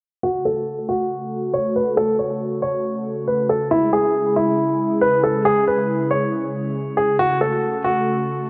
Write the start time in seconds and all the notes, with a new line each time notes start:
0.23 C#3 A3 F#4 A4
0.45 A4
0.89 F#4
1.54 C#5
1.76 B4
1.97 A4
2.19 C#5
2.62 C#5
3.27 B4
3.49 A4
3.71 G#3 E4 G#4
3.93 G#4
4.36 E4
5.01 B4
5.23 A4
5.45 G#4
5.67 B4
6.11 C#5
6.97 G#4
7.19 A3 F#4 A4
7.41 A4
7.84 F#4